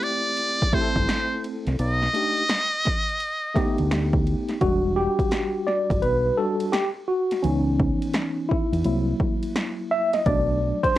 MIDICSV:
0, 0, Header, 1, 5, 480
1, 0, Start_track
1, 0, Key_signature, 1, "minor"
1, 0, Tempo, 705882
1, 1218, Time_signature, 4, 2, 24, 8
1, 7468, End_track
2, 0, Start_track
2, 0, Title_t, "Muted trumpet"
2, 0, Program_c, 0, 59
2, 20, Note_on_c, 0, 74, 113
2, 504, Note_on_c, 0, 72, 93
2, 514, Note_off_c, 0, 74, 0
2, 981, Note_off_c, 0, 72, 0
2, 1229, Note_on_c, 0, 75, 119
2, 2636, Note_off_c, 0, 75, 0
2, 7468, End_track
3, 0, Start_track
3, 0, Title_t, "Tine electric piano"
3, 0, Program_c, 1, 4
3, 0, Note_on_c, 1, 57, 70
3, 0, Note_on_c, 1, 60, 62
3, 0, Note_on_c, 1, 64, 63
3, 0, Note_on_c, 1, 67, 73
3, 463, Note_off_c, 1, 57, 0
3, 464, Note_off_c, 1, 60, 0
3, 468, Note_off_c, 1, 64, 0
3, 470, Note_off_c, 1, 67, 0
3, 493, Note_on_c, 1, 57, 75
3, 498, Note_on_c, 1, 60, 72
3, 504, Note_on_c, 1, 64, 71
3, 509, Note_on_c, 1, 67, 64
3, 554, Note_on_c, 1, 69, 81
3, 561, Note_off_c, 1, 67, 0
3, 1182, Note_off_c, 1, 57, 0
3, 1184, Note_off_c, 1, 60, 0
3, 1187, Note_off_c, 1, 64, 0
3, 1212, Note_off_c, 1, 69, 0
3, 1450, Note_on_c, 1, 57, 62
3, 1456, Note_on_c, 1, 62, 56
3, 1462, Note_on_c, 1, 63, 57
3, 1468, Note_on_c, 1, 67, 71
3, 1643, Note_off_c, 1, 57, 0
3, 1646, Note_off_c, 1, 62, 0
3, 1649, Note_off_c, 1, 63, 0
3, 1652, Note_off_c, 1, 67, 0
3, 2408, Note_on_c, 1, 57, 82
3, 2414, Note_on_c, 1, 59, 76
3, 2418, Note_on_c, 1, 63, 74
3, 2425, Note_on_c, 1, 67, 91
3, 3099, Note_off_c, 1, 57, 0
3, 3102, Note_off_c, 1, 59, 0
3, 3104, Note_off_c, 1, 63, 0
3, 3108, Note_off_c, 1, 67, 0
3, 3133, Note_on_c, 1, 55, 53
3, 3136, Note_on_c, 1, 66, 91
3, 3137, Note_on_c, 1, 62, 47
3, 3376, Note_on_c, 1, 67, 90
3, 3854, Note_on_c, 1, 74, 94
3, 3871, Note_off_c, 1, 67, 0
3, 4094, Note_on_c, 1, 71, 93
3, 4103, Note_off_c, 1, 74, 0
3, 4333, Note_off_c, 1, 55, 0
3, 4334, Note_off_c, 1, 62, 0
3, 4336, Note_off_c, 1, 66, 0
3, 4336, Note_on_c, 1, 69, 93
3, 4341, Note_on_c, 1, 55, 49
3, 4342, Note_on_c, 1, 62, 42
3, 4344, Note_off_c, 1, 71, 0
3, 4344, Note_on_c, 1, 66, 51
3, 4556, Note_off_c, 1, 55, 0
3, 4556, Note_off_c, 1, 62, 0
3, 4557, Note_off_c, 1, 66, 0
3, 4574, Note_on_c, 1, 67, 95
3, 4584, Note_off_c, 1, 69, 0
3, 4683, Note_off_c, 1, 67, 0
3, 4814, Note_on_c, 1, 66, 86
3, 5050, Note_on_c, 1, 61, 86
3, 5054, Note_on_c, 1, 52, 57
3, 5058, Note_on_c, 1, 59, 48
3, 5062, Note_on_c, 1, 63, 61
3, 5063, Note_off_c, 1, 66, 0
3, 5772, Note_on_c, 1, 64, 82
3, 5796, Note_off_c, 1, 61, 0
3, 5989, Note_off_c, 1, 52, 0
3, 5991, Note_off_c, 1, 59, 0
3, 5993, Note_off_c, 1, 63, 0
3, 6015, Note_off_c, 1, 64, 0
3, 6015, Note_on_c, 1, 54, 58
3, 6019, Note_on_c, 1, 58, 53
3, 6024, Note_on_c, 1, 64, 61
3, 6739, Note_on_c, 1, 76, 105
3, 6893, Note_on_c, 1, 75, 99
3, 6899, Note_off_c, 1, 76, 0
3, 6949, Note_off_c, 1, 54, 0
3, 6952, Note_off_c, 1, 58, 0
3, 6954, Note_off_c, 1, 64, 0
3, 6971, Note_off_c, 1, 75, 0
3, 6976, Note_on_c, 1, 54, 58
3, 6979, Note_on_c, 1, 74, 104
3, 6980, Note_on_c, 1, 57, 52
3, 6984, Note_on_c, 1, 62, 64
3, 7367, Note_on_c, 1, 72, 101
3, 7386, Note_off_c, 1, 74, 0
3, 7468, Note_off_c, 1, 54, 0
3, 7468, Note_off_c, 1, 57, 0
3, 7468, Note_off_c, 1, 62, 0
3, 7468, Note_off_c, 1, 72, 0
3, 7468, End_track
4, 0, Start_track
4, 0, Title_t, "Fingered electric bass"
4, 0, Program_c, 2, 33
4, 654, Note_on_c, 2, 31, 80
4, 719, Note_off_c, 2, 31, 0
4, 1136, Note_on_c, 2, 36, 88
4, 1200, Note_off_c, 2, 36, 0
4, 1221, Note_on_c, 2, 35, 102
4, 1405, Note_off_c, 2, 35, 0
4, 2579, Note_on_c, 2, 38, 79
4, 2947, Note_off_c, 2, 38, 0
4, 3139, Note_on_c, 2, 28, 86
4, 3444, Note_off_c, 2, 28, 0
4, 4014, Note_on_c, 2, 31, 76
4, 4079, Note_off_c, 2, 31, 0
4, 4101, Note_on_c, 2, 35, 80
4, 4285, Note_off_c, 2, 35, 0
4, 5063, Note_on_c, 2, 37, 103
4, 5366, Note_off_c, 2, 37, 0
4, 5933, Note_on_c, 2, 40, 86
4, 5998, Note_off_c, 2, 40, 0
4, 6019, Note_on_c, 2, 36, 99
4, 6204, Note_off_c, 2, 36, 0
4, 6978, Note_on_c, 2, 35, 98
4, 7283, Note_off_c, 2, 35, 0
4, 7468, End_track
5, 0, Start_track
5, 0, Title_t, "Drums"
5, 20, Note_on_c, 9, 51, 51
5, 88, Note_off_c, 9, 51, 0
5, 252, Note_on_c, 9, 51, 82
5, 320, Note_off_c, 9, 51, 0
5, 423, Note_on_c, 9, 36, 80
5, 491, Note_off_c, 9, 36, 0
5, 496, Note_on_c, 9, 36, 93
5, 498, Note_on_c, 9, 51, 54
5, 564, Note_off_c, 9, 36, 0
5, 566, Note_off_c, 9, 51, 0
5, 653, Note_on_c, 9, 36, 85
5, 721, Note_off_c, 9, 36, 0
5, 741, Note_on_c, 9, 38, 99
5, 743, Note_on_c, 9, 44, 57
5, 743, Note_on_c, 9, 51, 81
5, 809, Note_off_c, 9, 38, 0
5, 811, Note_off_c, 9, 44, 0
5, 811, Note_off_c, 9, 51, 0
5, 982, Note_on_c, 9, 51, 53
5, 1050, Note_off_c, 9, 51, 0
5, 1134, Note_on_c, 9, 51, 44
5, 1139, Note_on_c, 9, 38, 36
5, 1202, Note_off_c, 9, 51, 0
5, 1207, Note_off_c, 9, 38, 0
5, 1218, Note_on_c, 9, 51, 80
5, 1286, Note_off_c, 9, 51, 0
5, 1377, Note_on_c, 9, 38, 34
5, 1445, Note_off_c, 9, 38, 0
5, 1460, Note_on_c, 9, 51, 61
5, 1528, Note_off_c, 9, 51, 0
5, 1612, Note_on_c, 9, 51, 40
5, 1680, Note_off_c, 9, 51, 0
5, 1691, Note_on_c, 9, 44, 53
5, 1691, Note_on_c, 9, 51, 72
5, 1696, Note_on_c, 9, 38, 111
5, 1759, Note_off_c, 9, 44, 0
5, 1759, Note_off_c, 9, 51, 0
5, 1764, Note_off_c, 9, 38, 0
5, 1939, Note_on_c, 9, 38, 36
5, 1939, Note_on_c, 9, 51, 51
5, 1950, Note_on_c, 9, 36, 80
5, 2007, Note_off_c, 9, 38, 0
5, 2007, Note_off_c, 9, 51, 0
5, 2018, Note_off_c, 9, 36, 0
5, 2101, Note_on_c, 9, 51, 42
5, 2169, Note_off_c, 9, 51, 0
5, 2177, Note_on_c, 9, 51, 80
5, 2245, Note_off_c, 9, 51, 0
5, 2418, Note_on_c, 9, 36, 100
5, 2420, Note_on_c, 9, 38, 35
5, 2422, Note_on_c, 9, 51, 59
5, 2486, Note_off_c, 9, 36, 0
5, 2488, Note_off_c, 9, 38, 0
5, 2490, Note_off_c, 9, 51, 0
5, 2570, Note_on_c, 9, 51, 50
5, 2638, Note_off_c, 9, 51, 0
5, 2659, Note_on_c, 9, 38, 103
5, 2661, Note_on_c, 9, 44, 55
5, 2661, Note_on_c, 9, 51, 78
5, 2727, Note_off_c, 9, 38, 0
5, 2729, Note_off_c, 9, 44, 0
5, 2729, Note_off_c, 9, 51, 0
5, 2809, Note_on_c, 9, 36, 90
5, 2877, Note_off_c, 9, 36, 0
5, 2901, Note_on_c, 9, 51, 54
5, 2969, Note_off_c, 9, 51, 0
5, 3050, Note_on_c, 9, 51, 46
5, 3056, Note_on_c, 9, 38, 36
5, 3118, Note_off_c, 9, 51, 0
5, 3124, Note_off_c, 9, 38, 0
5, 3136, Note_on_c, 9, 51, 75
5, 3138, Note_on_c, 9, 36, 105
5, 3204, Note_off_c, 9, 51, 0
5, 3206, Note_off_c, 9, 36, 0
5, 3530, Note_on_c, 9, 36, 80
5, 3534, Note_on_c, 9, 51, 55
5, 3598, Note_off_c, 9, 36, 0
5, 3602, Note_off_c, 9, 51, 0
5, 3613, Note_on_c, 9, 44, 50
5, 3613, Note_on_c, 9, 51, 73
5, 3617, Note_on_c, 9, 38, 107
5, 3681, Note_off_c, 9, 44, 0
5, 3681, Note_off_c, 9, 51, 0
5, 3685, Note_off_c, 9, 38, 0
5, 3859, Note_on_c, 9, 38, 35
5, 3927, Note_off_c, 9, 38, 0
5, 4013, Note_on_c, 9, 36, 98
5, 4019, Note_on_c, 9, 51, 59
5, 4081, Note_off_c, 9, 36, 0
5, 4087, Note_off_c, 9, 51, 0
5, 4096, Note_on_c, 9, 51, 71
5, 4164, Note_off_c, 9, 51, 0
5, 4490, Note_on_c, 9, 51, 65
5, 4558, Note_off_c, 9, 51, 0
5, 4579, Note_on_c, 9, 38, 101
5, 4581, Note_on_c, 9, 44, 56
5, 4581, Note_on_c, 9, 51, 73
5, 4647, Note_off_c, 9, 38, 0
5, 4649, Note_off_c, 9, 44, 0
5, 4649, Note_off_c, 9, 51, 0
5, 4972, Note_on_c, 9, 51, 61
5, 4978, Note_on_c, 9, 38, 36
5, 5040, Note_off_c, 9, 51, 0
5, 5046, Note_off_c, 9, 38, 0
5, 5059, Note_on_c, 9, 51, 78
5, 5127, Note_off_c, 9, 51, 0
5, 5303, Note_on_c, 9, 36, 88
5, 5371, Note_off_c, 9, 36, 0
5, 5455, Note_on_c, 9, 51, 57
5, 5523, Note_off_c, 9, 51, 0
5, 5532, Note_on_c, 9, 44, 53
5, 5532, Note_on_c, 9, 51, 74
5, 5537, Note_on_c, 9, 38, 98
5, 5600, Note_off_c, 9, 44, 0
5, 5600, Note_off_c, 9, 51, 0
5, 5605, Note_off_c, 9, 38, 0
5, 5789, Note_on_c, 9, 36, 82
5, 5857, Note_off_c, 9, 36, 0
5, 5938, Note_on_c, 9, 51, 58
5, 6006, Note_off_c, 9, 51, 0
5, 6015, Note_on_c, 9, 51, 76
5, 6083, Note_off_c, 9, 51, 0
5, 6256, Note_on_c, 9, 36, 92
5, 6324, Note_off_c, 9, 36, 0
5, 6409, Note_on_c, 9, 51, 67
5, 6477, Note_off_c, 9, 51, 0
5, 6498, Note_on_c, 9, 38, 101
5, 6500, Note_on_c, 9, 44, 55
5, 6500, Note_on_c, 9, 51, 82
5, 6566, Note_off_c, 9, 38, 0
5, 6568, Note_off_c, 9, 44, 0
5, 6568, Note_off_c, 9, 51, 0
5, 6890, Note_on_c, 9, 51, 65
5, 6896, Note_on_c, 9, 38, 35
5, 6958, Note_off_c, 9, 51, 0
5, 6964, Note_off_c, 9, 38, 0
5, 6976, Note_on_c, 9, 51, 80
5, 6977, Note_on_c, 9, 36, 110
5, 7044, Note_off_c, 9, 51, 0
5, 7045, Note_off_c, 9, 36, 0
5, 7369, Note_on_c, 9, 36, 88
5, 7373, Note_on_c, 9, 51, 56
5, 7437, Note_off_c, 9, 36, 0
5, 7441, Note_off_c, 9, 51, 0
5, 7468, End_track
0, 0, End_of_file